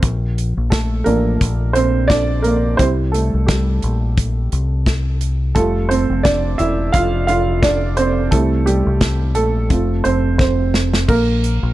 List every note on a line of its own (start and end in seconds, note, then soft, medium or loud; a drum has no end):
0.03 0.53 A#1 medium
0.03 kick medium
0.03 closed hi-hat medium
0.38 closed hi-hat medium
0.57 1.03 A#1 medium
0.70 1.04 A3 medium
0.70 1.07 A4 medium
0.70 kick medium
0.70 snare medium
0.70 closed hi-hat medium
1.04 1.39 A1 medium
1.04 2.75 F3 soft
1.04 1.72 A#3 medium
1.04 2.09 D4 soft
1.04 1.77 A#4 medium
1.04 closed hi-hat medium
1.41 2.75 A#1 medium
1.41 kick medium
1.41 closed hi-hat medium
1.73 2.08 C4 medium
1.73 2.10 C5 medium
1.73 closed hi-hat medium
2.08 2.42 D4 medium
2.08 2.44 D5 medium
2.08 kick medium
2.08 snare medium
2.08 closed hi-hat medium
2.42 2.77 A#3 medium
2.42 2.76 A#4 medium
2.42 closed hi-hat medium
2.77 3.30 C2 medium
2.77 3.27 G3 soft
2.77 2.88 C4 medium
2.77 3.27 E4 medium
2.77 2.85 C5 medium
2.77 kick medium
2.77 closed hi-hat medium
3.12 3.46 A3 medium
3.12 3.48 A4 medium
3.12 closed hi-hat medium
3.34 3.80 C2 medium
3.46 4.14 G3 soft
3.46 4.13 G4 medium
3.46 kick medium
3.46 snare medium
3.46 closed hi-hat medium
3.82 4.48 A#1 medium
3.82 closed hi-hat medium
4.17 kick medium
4.17 closed hi-hat medium
4.52 5.52 C2 medium
4.52 closed hi-hat medium
4.86 kick medium
4.86 snare medium
4.86 closed hi-hat medium
5.21 closed hi-hat medium
5.55 6.06 F1 medium
5.55 6.55 G3 soft
5.55 5.88 A3 medium
5.55 6.56 F4 medium
5.55 5.91 A4 medium
5.55 kick medium
5.55 closed hi-hat medium
5.89 6.23 C4 medium
5.89 6.25 C5 medium
5.89 closed hi-hat medium
6.09 6.56 F1 medium
6.23 6.57 D4 medium
6.23 6.60 D5 medium
6.23 kick medium
6.23 snare medium
6.23 closed hi-hat medium
6.58 6.92 E1 medium
6.58 6.92 E4 medium
6.58 6.94 E5 medium
6.58 closed hi-hat medium
6.92 8.28 F1 medium
6.92 7.26 F4 medium
6.92 7.25 F5 medium
6.92 kick medium
6.92 closed hi-hat medium
7.27 7.61 F4 medium
7.27 7.64 F5 medium
7.27 closed hi-hat medium
7.62 7.96 D4 medium
7.62 7.98 D5 medium
7.62 kick medium
7.62 snare medium
7.62 closed hi-hat medium
7.97 8.30 C4 medium
7.97 8.29 C5 medium
7.97 closed hi-hat medium
8.31 8.82 C2 medium
8.31 8.66 G3 soft
8.31 8.65 A3 medium
8.31 9.32 C4 soft
8.31 9.32 E4 medium
8.31 8.67 A4 medium
8.31 kick medium
8.31 closed hi-hat medium
8.66 9.32 G3 medium
8.66 9.38 G4 medium
8.66 closed hi-hat medium
8.86 9.36 C2 medium
9.01 kick medium
9.01 snare medium
9.01 closed hi-hat medium
9.35 9.68 A#1 medium
9.35 9.68 A3 medium
9.35 10.07 A4 medium
9.35 closed hi-hat medium
9.70 10.03 F1 medium
9.70 10.18 A3 soft
9.70 10.04 C4 soft
9.70 10.18 F4 soft
9.70 kick medium
9.70 closed hi-hat medium
10.04 11.05 F1 medium
10.04 10.37 C4 medium
10.04 10.37 C5 medium
10.04 closed hi-hat medium
10.38 10.90 C4 medium
10.38 10.89 C5 medium
10.38 kick medium
10.38 snare soft
10.74 snare medium
10.94 snare medium
11.08 11.59 A#1 medium
11.08 11.73 A#3 medium
11.08 11.73 A#4 medium
11.08 kick medium
11.08 crash medium
11.44 closed hi-hat medium
11.63 11.73 A#1 medium